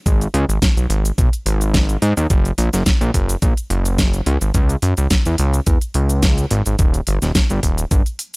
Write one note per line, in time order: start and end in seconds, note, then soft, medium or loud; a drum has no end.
0.06 0.28 G#1 loud
0.06 kick loud
0.06 closed hi-hat medium
0.06 cabasa medium
0.21 closed hi-hat soft
0.21 cabasa soft
0.34 0.45 C#2 loud
0.34 open hi-hat loud
0.49 0.59 G#1 medium
0.49 closed hi-hat soft
0.49 cabasa medium
0.62 kick loud
0.62 snare loud
0.62 closed hi-hat medium
0.62 cabasa medium
0.77 0.87 B1 medium
0.77 closed hi-hat soft
0.77 cabasa soft
0.90 1.11 G#1 medium
0.90 open hi-hat loud
1.05 closed hi-hat soft
1.05 cabasa medium
1.18 1.29 B1 medium
1.18 kick loud
1.18 closed hi-hat medium
1.18 cabasa medium
1.33 closed hi-hat soft
1.33 cabasa soft
1.46 1.97 G#1 medium
1.46 open hi-hat loud
1.61 closed hi-hat soft
1.61 cabasa medium
1.74 kick loud
1.74 snare loud
1.74 closed hi-hat medium
1.74 cabasa medium
1.89 closed hi-hat soft
1.89 cabasa soft
2.02 2.14 G#2 loud
2.02 open hi-hat loud
2.17 2.27 D#2 medium
2.17 open hi-hat medium
2.17 cabasa medium
2.30 2.52 F#1 loud
2.30 kick loud
2.30 closed hi-hat medium
2.30 cabasa medium
2.45 closed hi-hat soft
2.45 cabasa soft
2.58 2.70 A#1 loud
2.58 open hi-hat medium
2.73 2.83 F#1 medium
2.73 snare soft
2.73 closed hi-hat soft
2.73 cabasa medium
2.86 kick loud
2.86 snare loud
2.86 closed hi-hat medium
2.86 cabasa medium
3.01 3.11 A#1 medium
3.01 closed hi-hat soft
3.01 cabasa soft
3.14 3.36 F#1 loud
3.14 kick medium
3.14 open hi-hat loud
3.29 closed hi-hat soft
3.29 cabasa medium
3.42 3.54 A#1 medium
3.42 kick loud
3.42 closed hi-hat medium
3.42 cabasa medium
3.57 closed hi-hat soft
3.57 cabasa soft
3.70 4.21 F#1 medium
3.70 open hi-hat loud
3.85 closed hi-hat soft
3.85 cabasa medium
3.98 kick loud
3.98 snare loud
3.98 closed hi-hat medium
3.98 cabasa medium
4.13 closed hi-hat soft
4.13 cabasa soft
4.26 4.38 C#2 loud
4.26 open hi-hat loud
4.41 4.51 G#1 medium
4.41 closed hi-hat soft
4.41 cabasa medium
4.54 4.76 C#2 loud
4.54 kick loud
4.54 closed hi-hat medium
4.54 cabasa medium
4.69 closed hi-hat soft
4.69 cabasa soft
4.82 4.94 F#2 loud
4.82 open hi-hat medium
4.97 5.08 C#2 medium
4.97 closed hi-hat soft
4.97 cabasa medium
5.10 kick loud
5.10 snare loud
5.10 closed hi-hat medium
5.10 cabasa medium
5.25 5.36 E2 medium
5.25 closed hi-hat soft
5.25 cabasa soft
5.38 5.60 C#2 loud
5.38 open hi-hat loud
5.54 closed hi-hat soft
5.54 cabasa medium
5.66 5.78 E2 medium
5.66 kick loud
5.66 closed hi-hat medium
5.66 cabasa medium
5.81 closed hi-hat soft
5.81 cabasa soft
5.94 6.46 C#2 medium
5.94 open hi-hat loud
6.09 closed hi-hat soft
6.09 cabasa medium
6.22 kick loud
6.22 snare loud
6.22 closed hi-hat medium
6.22 cabasa medium
6.38 closed hi-hat soft
6.38 cabasa soft
6.51 6.62 G#1 loud
6.51 open hi-hat loud
6.66 6.76 G#1 medium
6.66 open hi-hat medium
6.66 cabasa medium
6.79 7.01 D#1 loud
6.79 kick loud
6.79 closed hi-hat medium
6.79 cabasa medium
6.94 closed hi-hat soft
6.94 cabasa soft
7.07 7.19 G1 loud
7.07 open hi-hat loud
7.22 7.32 D#1 medium
7.22 snare soft
7.22 closed hi-hat soft
7.22 cabasa medium
7.35 kick loud
7.35 snare loud
7.35 closed hi-hat medium
7.35 cabasa medium
7.50 7.60 G1 medium
7.50 closed hi-hat soft
7.50 cabasa soft
7.63 7.85 D#1 loud
7.63 kick medium
7.63 open hi-hat loud
7.78 closed hi-hat soft
7.78 cabasa medium
7.91 8.02 G1 medium
7.91 kick loud
7.91 closed hi-hat medium
7.91 cabasa medium
8.06 closed hi-hat soft
8.06 cabasa soft
8.19 open hi-hat loud